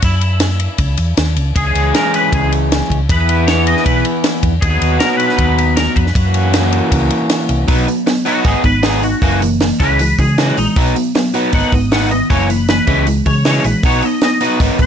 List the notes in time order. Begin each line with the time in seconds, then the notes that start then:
0.02 F#2 E4, kick, ride
0.21 ride
0.40 snare, ride
0.60 ride
0.78 C#2, kick, ride
0.97 E2, ride
1.17 D#2, snare, ride
1.36 C#2, ride
1.54 C#2 E3 G#3 C#4 G#4, kick, ride
1.67 G#4
1.75 C#2, ride
1.95 A#4, snare, ride
2.14 B4, ride
2.32 C#2 G#4, kick, ride
2.52 ride
2.72 snare, ride
2.90 C#2, kick, ride
3.07 E2 E3 B3 E4 G#4 B4, kick, ride
3.20 B4
3.29 ride
3.47 C#5, snare, ride
3.67 D#5, ride
3.77 snare
3.86 B1 B4, kick, ride
4.05 ride
4.24 snare, ride
4.43 E2, kick, ride
4.61 D#2 F#3 B3 D#4 F#4 G#4, kick, ride
4.70 G#4
4.81 D#2, ride
5.00 A#4, snare, ride
5.17 B4, ride
5.29 snare
5.37 D#2 B4, kick, ride
5.58 ride
5.76 A#4, snare, ride
5.96 F2 B4, kick, ride
6.07 snare
6.13 F#2 E3 A#3 C#4 F#4, kick, ride
6.34 ride
6.54 snare, ride
6.73 ride
6.92 C#2, kick, ride
7.10 ride
7.30 snare, ride
7.49 C2, ride
7.68 B1 F#3 B3 D#4, kick, open hi-hat
7.87 F#3 B3, open hi-hat
8.07 F#3 B3, snare, open hi-hat
8.25 F#3 B3 D#4 F#4, open hi-hat
8.44 G#1 B3 D#4 G#4, kick, open hi-hat
8.64 G#1 B3 D#4 B4, kick, open hi-hat
8.83 B3 D#4 G#4, snare, open hi-hat
9.03 B3 D#4 F#4, open hi-hat
9.22 F#1 E3 A#3 C#4 F#4, kick, open hi-hat
9.42 E3 A#3, open hi-hat
9.60 E3 A#3, snare, open hi-hat
9.80 C#2 E3 G#3 C#4 B4, kick, open hi-hat
9.99 E3 G#3, open hi-hat
10.19 C#3 E3 G#3 G#4, kick, open hi-hat
10.38 E3 G#3 C#4 F#4, snare, open hi-hat
10.57 A#1 E3 G#3 D#4, open hi-hat
10.76 B1 F#3 B3 D#4, kick, open hi-hat
10.96 F#3 B3, open hi-hat
11.15 F#3 B3, snare, open hi-hat
11.34 F#3 B3 D#4, open hi-hat
11.52 G#1 D#3 B3 D#4 F#5, kick, open hi-hat
11.72 G#1 D#3 B3 D#5, kick, open hi-hat
11.92 D#3 B3 D#4 F#5, snare, open hi-hat
12.11 D#3 B3 D#5, open hi-hat
12.30 F#1 E3 A#3 C#4 C#5, kick, open hi-hat
12.49 E3 A#3 B4, open hi-hat
12.68 E3 A#3 B4, snare, open hi-hat
12.87 C#2 E3 G#3 C#4, kick, open hi-hat
13.07 E3 G#3, open hi-hat
13.26 C#3 E3 G#3 C#5, kick, open hi-hat
13.45 E3 G#3 C#4 C#5, snare, open hi-hat
13.64 A#1 E3 G#3 B4, open hi-hat
13.83 B1 B3 D#4 F#4 C#5, kick, open hi-hat
14.02 B3 D#4 D#5, open hi-hat
14.22 B3 D#4 D#5, snare, open hi-hat
14.41 B3 D#4 F#4, open hi-hat
14.60 G#1 D#3 B3 D#4, kick, open hi-hat
14.79 G#1 D#3 B3 C#5, kick, open hi-hat